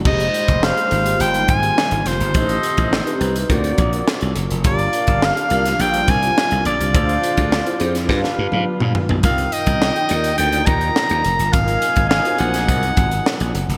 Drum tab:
CC |x---------------|----------------|----------------|----------------|
HH |-xxx-xxxxxxx-xxx|xxxx-xxxxxxx-xxx|xxxx-xxxxxxx-xxx|xxxx-xxx--------|
SD |----o-------o-o-|----o-------o---|----o--o----o---|----o--ooo------|
T1 |----------------|----------------|----------------|-----------o----|
T2 |----------------|----------------|----------------|-------------o--|
FT |----------------|----------------|----------------|--------------oo|
BD |o--o------o-----|o--o----o-o-----|o--o------o-----|o--o----o-------|

CC |----------------|----------------|
HH |xxxx-xxxxxxx-xxx|xxxx-xxxxxxx-xxx|
SD |----o-------o---|----o--o----o---|
T1 |----------------|----------------|
T2 |----------------|----------------|
FT |----------------|----------------|
BD |o--o------o-----|o--o----o-o-----|